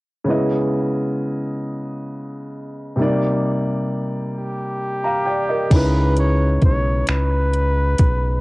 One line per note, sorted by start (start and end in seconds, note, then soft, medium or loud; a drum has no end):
0.24 2.94 C#3 medium
0.24 2.95 G#3 soft
0.24 2.95 B3 medium
0.29 2.96 E4 soft
0.29 2.97 D#5 medium
2.96 5.66 C3 medium
2.96 5.67 G3 soft
2.96 5.67 A#3 medium
3.00 5.68 D#4 medium
3.00 4.78 D5 medium
4.38 5.75 G4 medium
5.04 5.26 F5 soft
5.04 5.25 A#5 medium
5.26 5.48 D5 soft
5.26 5.47 G5 medium
5.49 5.93 A#4 soft
5.49 5.92 D#5 medium
5.70 6.59 C#2 loud
5.70 8.39 C#3 medium
5.70 8.40 G#3 soft
5.70 8.41 D#4 soft
5.70 8.41 E4 soft
5.70 6.18 B4 medium
5.70 kick medium
5.70 closed hi-hat medium
5.70 crash medium
5.76 8.41 B4 medium
6.16 6.60 C#5 medium
6.16 closed hi-hat soft
6.61 7.04 B1 medium
6.61 7.06 C#5 medium
6.61 kick medium
6.61 closed hi-hat medium
7.07 7.95 C#2 medium
7.07 8.41 B4 medium
7.07 finger snap medium
7.07 closed hi-hat medium
7.53 closed hi-hat soft
7.98 8.41 B1 medium
7.98 kick medium
7.98 closed hi-hat medium